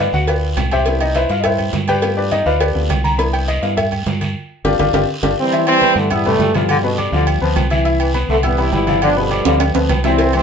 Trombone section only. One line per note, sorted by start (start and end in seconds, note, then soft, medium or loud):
5.39 5.67 E3 medium
5.39 5.67 G3 medium
5.39 5.65 C4 loud
5.68 6.11 E3 medium
5.68 6.11 G3 medium
5.68 5.94 C4 loud
5.96 6.11 A3 loud
6.11 6.25 E3 medium
6.11 6.53 G3 medium
6.11 6.25 B3 medium
6.26 6.66 E3 medium
6.26 6.52 A3 loud
6.54 7.38 B2 medium
6.54 7.38 D3 medium
6.54 7.42 G3 medium
8.30 8.36 A3 medium
8.44 8.98 E3 medium
8.44 8.73 G3 medium
8.44 8.57 B3 medium
8.58 8.72 E4 loud
8.73 9.00 G3 medium
8.73 9.00 B3 medium
8.73 9.00 E4 loud
9.03 9.57 F3 medium
9.03 9.57 B3 medium
9.03 9.16 D4 loud
9.18 9.72 B2 medium
9.18 9.72 D3 medium
9.18 9.71 G3 medium
10.05 10.34 E3 medium
10.05 10.34 G3 medium
10.05 10.32 C4 loud
10.35 10.43 E3 medium
10.35 10.43 G3 medium
10.35 10.43 C4 loud